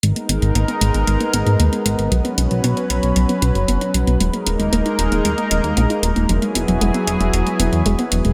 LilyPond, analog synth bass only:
\new Staff \with { instrumentName = "Analog synth bass" } { \clef bass \time 4/4 \key gis \minor \tempo 4 = 115 gis,,16 r16 gis,,16 gis,,16 gis,,16 r16 gis,,16 gis,,16 gis,,16 r16 gis,,16 gis,16 dis,16 r16 gis,,16 gis,,16 | b,,16 r16 b,,16 b,,16 b,,16 r16 b,,16 b,,16 b,,16 r16 b,,16 fis,,16 fis,,16 r16 b,,16 b,,16 | dis,,16 r16 dis,,16 dis,,16 dis,,16 r16 dis,,16 dis,,16 dis,,16 r16 dis,,16 dis,16 ais,,16 r16 dis,,16 dis,,16 | e,,16 r16 e,,16 e,,16 e,,16 r16 e,,16 e,,16 e,,16 r16 e,,16 e,16 e,,16 r16 e,,16 e,,16 | }